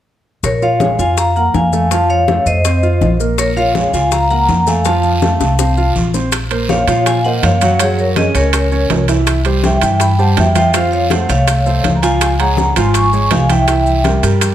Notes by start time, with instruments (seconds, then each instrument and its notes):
0.43 upright bass A#1, vibraphone A#4 C#5, high bongo, high conga, maracas
0.62 upright piano F4 F5, vibraphone C#5 F5, high conga, maracas
0.80 upright piano G#3 G#4, high bongo, high conga, maracas
0.99 upright bass F2, upright piano F4 F5, vibraphone F5 G#5, high bongo, high conga, maracas
1.17 vibraphone F5 A#5, high bongo, high conga, maracas
1.36 upright piano A#3 A#4, vibraphone F#5 A#5, high bongo, high conga, maracas
1.54 upright bass F2, vibraphone F5 G#5, high bongo, low bongo, high conga, maracas
1.73 upright piano A3 A4, high bongo, high conga, maracas
1.91 upright piano F3 F4, vibraphone F5 A5, high bongo, maracas
2.10 vibraphone C#5 F5, high conga, maracas
2.28 upright piano A3 A4, high bongo, high conga, maracas
2.46 upright bass F2, vibraphone C5 D#5, high bongo, high conga, maracas
2.65 upright piano C4 C5, high bongo, high conga, maracas
2.83 upright piano F4 F5, high bongo, high conga, maracas
3.01 upright bass A#1, high bongo, low bongo, high conga, maracas
3.20 upright piano A#3 A#4, high bongo, maracas
3.38 vibraphone A#4 C#5, high bongo, high conga, long guiro, maracas
3.57 upright piano F4 F5, vibraphone C#5 F5, high conga, maracas
3.75 upright piano G#3 G#4, high bongo, high conga, short guiro, maracas
3.93 upright bass C#2, upright piano F4 F5, vibraphone F5 G#5, high bongo, high conga, short guiro, maracas
4.12 vibraphone F5 A#5, high bongo, high conga, long guiro, maracas
4.30 upright piano A#3 A#4, vibraphone F#5 A#5, high bongo, high conga, maracas
4.48 upright bass F2, high bongo, low bongo, high conga, short guiro, maracas
4.67 upright piano A3 A4, vibraphone F5 G#5, high bongo, high conga, short guiro, maracas
4.85 upright piano F3 F4, vibraphone F5 A5, high bongo, high conga, long guiro, maracas
5.03 high conga, maracas
5.22 upright piano A3 A4, high bongo, high conga, short guiro, maracas
5.40 upright bass C2, high bongo, high conga, short guiro, maracas
5.59 upright piano C4 C5, high bongo, high conga, long guiro, maracas
5.77 upright piano F4 F5, high conga, maracas
5.95 upright bass A#1, high conga, short guiro, maracas
6.14 upright piano C4 C5, low bongo, high conga, short guiro, maracas
6.32 high bongo, high conga, high timbale, long guiro, maracas
6.51 upright piano A#3 A#4 C5, high conga, high timbale, maracas
6.69 vibraphone C#5 F5, high bongo, high conga, short guiro, maracas
6.87 upright bass A#2, upright piano F3 F4 F5, vibraphone C#5 F5, high bongo, high timbale, short guiro, maracas
7.06 vibraphone F5 G#5, high bongo, high conga, high timbale, long guiro, maracas
7.25 upright piano A#3 A#4 C5, vibraphone D#5 F#5, high bongo, high conga, maracas
7.43 upright bass F#2, vibraphone C#5 F5, high bongo, low bongo, high conga, high timbale, short guiro, maracas
7.61 upright piano F#3 F#4 F#5, vibraphone C#5 F5, high bongo, high conga, high timbale, short guiro, maracas
7.79 upright piano F#3 F#4 F#5, vibraphone G#4 C#5, high bongo, high conga, high timbale, long guiro, maracas
7.98 vibraphone A#4 C#5, high conga, maracas
8.16 upright piano C#4 C#5, vibraphone G#4 D#5, high bongo, high conga, high timbale, short guiro, maracas
8.35 upright bass C#2, upright piano C#4 C#5, vibraphone A#4 C#5, high bongo, high conga, high timbale, short guiro, maracas
8.53 high bongo, high conga, high timbale, long guiro, maracas
8.72 upright piano C#4 C#5, high bongo, high conga, maracas
8.90 upright bass C2, high bongo, low bongo, high conga, high timbale, low timbale, short guiro, maracas
9.08 upright piano E3 E4 E5, high bongo, high conga, high timbale, short guiro, maracas
9.27 high bongo, high conga, high timbale, long guiro, maracas
9.45 upright piano G3 G4 C5, high conga, high timbale, maracas
9.64 vibraphone E5 G5, high bongo, high conga, short guiro, maracas
9.81 upright bass G2, upright piano E3 E4 E5, vibraphone E5 G5, high bongo, high conga, high timbale, short guiro, maracas
10.00 vibraphone G5 B5, high bongo, high conga, high timbale, long guiro, maracas
10.19 upright piano G3 G4 C5, vibraphone F#5 A5, high bongo, high conga, maracas
10.37 upright bass F2, vibraphone E5 G5, high bongo, low bongo, high conga, high timbale, low timbale, short guiro, maracas
10.55 upright piano F3 F4 F5, vibraphone E5 G5, high bongo, high conga, high timbale, short guiro, maracas
10.73 upright piano F3 F4 F5, vibraphone C5 F5, high bongo, high timbale, long guiro, maracas
10.92 vibraphone C#5 F5, high conga, maracas
11.10 upright piano A3 A4 C5, vibraphone C5 F#5, high bongo, high conga, high timbale, short guiro, maracas
11.29 upright bass C2, upright piano A3 A4, vibraphone C#5 F5, high bongo, high conga, high timbale, short guiro, maracas
11.47 high bongo, high conga, high timbale, long guiro, maracas
11.66 upright piano A3 A4 C5, high bongo, high conga, maracas
11.84 upright bass C#2, high bongo, low bongo, high conga, high timbale, short guiro, maracas
11.96 vibraphone A#5
12.03 upright piano F3 F4 F5, vibraphone F5 G#5, high bongo, high conga, high timbale, short guiro, maracas
12.21 high bongo, high conga, high timbale, long guiro, maracas
12.40 upright piano G#3 G#4 C#5, vibraphone F#5 A#5, high conga, high timbale, maracas
12.57 high bongo, high conga, short guiro, maracas
12.76 upright bass G#1, upright piano F3 F4 F5, vibraphone G#5 C6, high bongo, high conga, high timbale, short guiro, maracas
12.94 vibraphone G#5 C#6, high bongo, high conga, high timbale, long guiro, maracas
13.13 upright piano G#3 G#4 C#5, high bongo, high conga, maracas
13.31 upright bass C2, vibraphone F5 G#5, high bongo, low bongo, high conga, high timbale, low timbale, short guiro, maracas
13.49 upright piano E3 E4 E5, vibraphone E5 G5, high bongo, high conga, high timbale, short guiro, maracas
13.68 upright piano E3 E4 E5, high bongo, high timbale, long guiro, maracas
13.86 high conga, maracas
14.04 upright piano G3 G4 A#4, high bongo, high conga, high timbale, short guiro, maracas
14.23 upright bass G2, upright piano G3 G4 A#4, high bongo, high conga, high timbale, short guiro, maracas
14.41 high bongo, high conga, high timbale, long guiro, maracas